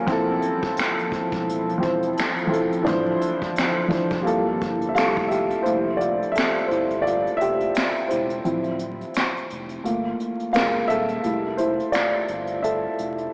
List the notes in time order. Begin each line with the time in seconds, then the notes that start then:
0.07 F1 F3 C4 E4 A4, kick, closed hi-hat
0.12 A4
0.42 closed hi-hat
0.63 kick, closed hi-hat
0.77 finger snap, snare, closed hi-hat
0.99 closed hi-hat
1.12 kick, closed hi-hat
1.32 E1, kick, closed hi-hat
1.49 closed hi-hat
1.69 closed hi-hat
1.78 F3 C4 E4
1.83 C5, kick, closed hi-hat
2.02 closed hi-hat
2.17 finger snap, snare, closed hi-hat
2.38 closed hi-hat
2.47 F3 C4 E4
2.52 F1 A4, closed hi-hat
2.72 closed hi-hat
2.83 E3 C4 D4 E4
2.87 D1 D3 F3 C5, kick, closed hi-hat
3.21 closed hi-hat
3.42 kick, closed hi-hat
3.56 finger snap, snare, closed hi-hat
3.88 F3 D4 E4, kick, closed hi-hat
3.93 C5, snare
4.10 F1, kick, closed hi-hat
4.21 G3 A#3 F4
4.27 G1 A4, closed hi-hat
4.61 kick, closed hi-hat
4.81 closed hi-hat
4.89 E5
4.95 F1 G3 F4 E5 F5, finger snap, snare, closed hi-hat
5.00 A4
5.16 kick, closed hi-hat
5.28 G4 E5, closed hi-hat
5.50 closed hi-hat
5.63 F1 G3 A3 E4 C5, closed hi-hat
5.97 F4 D5, closed hi-hat
6.22 closed hi-hat
6.32 E5, closed hi-hat
6.36 A4, finger snap, snare
6.57 G1, closed hi-hat
6.67 C5, closed hi-hat
6.71 G1 E4
6.90 closed hi-hat
7.02 D5
7.06 F4, closed hi-hat
7.27 closed hi-hat
7.37 E5, closed hi-hat
7.41 F1 G4
7.60 closed hi-hat
7.74 finger snap, snare, closed hi-hat
7.96 closed hi-hat
8.08 E1 E4 C5, closed hi-hat
8.30 closed hi-hat
8.45 D1 F3 C4 E4, closed hi-hat
8.64 closed hi-hat
8.79 closed hi-hat
9.01 closed hi-hat
9.14 finger snap, snare, closed hi-hat
9.36 F1, closed hi-hat
9.50 F1, closed hi-hat
9.69 closed hi-hat
9.84 G1 A3 A#3 F4, closed hi-hat
10.20 closed hi-hat
10.40 closed hi-hat
10.53 F#1 G#3 A#3 F4 A#4 F5, finger snap, snare, closed hi-hat
10.88 D#1 A4 E5, closed hi-hat
11.09 closed hi-hat
11.23 F1 G3 A3 E4, closed hi-hat
11.57 E4 C5, closed hi-hat
11.79 closed hi-hat
11.92 F4 D5, finger snap, snare, closed hi-hat
12.15 G1
12.28 G1, closed hi-hat
12.47 closed hi-hat
12.63 A4 E5, closed hi-hat
12.98 F1, closed hi-hat
13.18 closed hi-hat